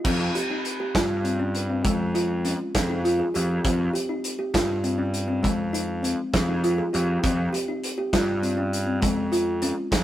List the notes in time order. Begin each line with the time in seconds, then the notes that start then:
0.05 F2 C4, kick, crash
0.35 G4, closed hi-hat
0.50 D#4
0.65 closed hi-hat
0.80 G4
0.95 G2 F4, kick, snare, closed hi-hat
1.24 C4, closed hi-hat
1.39 C#4
1.55 closed hi-hat
1.70 C4
1.84 F2 G#3, kick, closed hi-hat
2.15 F4, closed hi-hat
2.45 C#4, closed hi-hat
2.75 F2 G#4, kick, snare, closed hi-hat
2.90 D#4
3.05 F4, closed hi-hat
3.19 G#4
3.34 F2 G4, closed hi-hat
3.64 F2 C4, kick, closed hi-hat
3.94 G4, closed hi-hat
4.09 D#4
4.24 closed hi-hat
4.39 G4
4.54 G2 F4, kick, snare, closed hi-hat
4.84 C4, closed hi-hat
4.98 C#4
5.14 closed hi-hat
5.28 C4
5.43 F2 G#3, kick, closed hi-hat
5.73 D#4, closed hi-hat
6.03 C4, closed hi-hat
6.34 F2 G#4, kick, snare, closed hi-hat
6.49 D#4
6.64 F4, closed hi-hat
6.78 G#4
6.93 F2 G4, closed hi-hat
7.23 F2 C4, kick, closed hi-hat
7.53 G4, closed hi-hat
7.68 D#4
7.84 closed hi-hat
7.98 G4
8.13 G2 F4, kick, snare, closed hi-hat
8.43 C4, closed hi-hat
8.57 C#4
8.73 closed hi-hat
8.87 C4
9.02 F2 G#3, kick, closed hi-hat
9.32 F4, closed hi-hat
9.62 C#4, closed hi-hat
9.92 F2 G#4, kick, snare, closed hi-hat